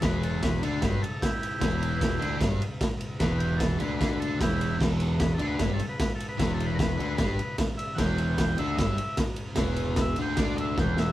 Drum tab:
CC |--------|--------|--------|x-------|
RD |xxxxxxxx|xxxxxxxx|xxxxxxxx|-xxxxxxx|
SD |o-o-o-o-|o-o-o-o-|o-o-o-o-|o-o-o-o-|
BD |o-o-o-o-|o-o-o-o-|o-o-o-o-|o-o-o-o-|

CC |--------|--------|--------|
RD |xxxxxxxx|xxxxxxxx|xxxxxx--|
SD |o-o-o-o-|o-o-o-o-|o-o-o-oo|
BD |o-o-o-o-|o-o-o-o-|o-o-o-o-|